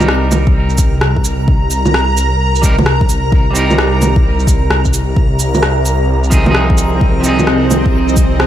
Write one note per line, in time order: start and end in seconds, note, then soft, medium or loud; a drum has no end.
0.00 5.15 C2 medium
0.00 2.59 G3 medium
0.00 2.61 C4 medium
0.00 2.62 D#4 medium
0.00 2.63 A#4 loud
0.00 8.47 A#4 medium
0.00 6.99 A#5 medium
0.00 low bongo soft
0.00 shaker soft
0.08 cross-stick loud
0.32 low bongo soft
0.32 cabasa medium
0.32 shaker medium
0.47 kick loud
0.70 shaker soft
0.78 kick loud
0.78 cabasa medium
0.78 shaker medium
1.01 cross-stick loud
1.17 kick medium
1.25 cabasa medium
1.25 shaker medium
1.48 kick loud
1.71 cabasa medium
1.71 shaker medium
1.86 low bongo soft
1.86 shaker soft
1.94 cross-stick loud
2.17 cabasa medium
2.17 shaker medium
2.55 shaker soft
2.62 2.74 G3 medium
2.62 2.75 C4 medium
2.62 2.75 D#4 medium
2.62 2.76 A#4 loud
2.62 kick loud
2.62 cabasa medium
2.62 shaker medium
2.79 low bongo soft
2.86 cross-stick loud
3.01 kick loud
3.09 cabasa medium
3.09 shaker medium
3.32 kick loud
3.51 5.14 G3 medium
3.51 5.15 C4 medium
3.55 5.16 D#4 medium
3.55 5.17 A#4 medium
3.55 cabasa medium
3.55 shaker medium
3.71 low bongo soft
3.71 shaker soft
3.78 cross-stick loud
4.02 low bongo soft
4.02 cabasa medium
4.02 shaker medium
4.16 kick loud
4.40 shaker soft
4.47 kick loud
4.47 cabasa medium
4.47 shaker medium
4.70 cross-stick loud
4.85 kick medium
4.85 shaker soft
4.94 cabasa medium
4.94 shaker medium
5.16 8.47 C2 medium
5.16 8.47 C4 medium
5.16 kick loud
5.39 cabasa medium
5.39 shaker medium
5.55 low bongo soft
5.55 shaker soft
5.63 cross-stick loud
5.73 8.47 C5 medium
5.86 cabasa medium
5.86 shaker medium
5.98 8.47 D#5 medium
6.24 shaker soft
6.30 6.41 F3 loud
6.30 6.43 C4 medium
6.30 6.44 D#4 medium
6.30 6.44 G#4 loud
6.30 kick loud
6.30 cabasa medium
6.30 shaker medium
6.43 7.19 F3 medium
6.43 7.21 C4 medium
6.43 low bongo soft
6.48 7.23 D#4 medium
6.48 7.25 G#4 medium
6.55 cross-stick loud
6.70 kick loud
6.78 cabasa medium
6.78 shaker medium
7.01 kick loud
7.20 8.47 F3 medium
7.20 8.47 C4 medium
7.20 8.47 G#5 medium
7.24 8.47 D#4 medium
7.24 cabasa medium
7.24 shaker medium
7.28 8.47 G#4 loud
7.39 low bongo soft
7.39 shaker soft
7.47 cross-stick loud
7.71 low bongo soft
7.71 cabasa medium
7.71 shaker medium
7.86 kick loud
8.09 shaker soft
8.17 kick loud
8.17 cabasa medium
8.17 shaker medium
8.40 cross-stick loud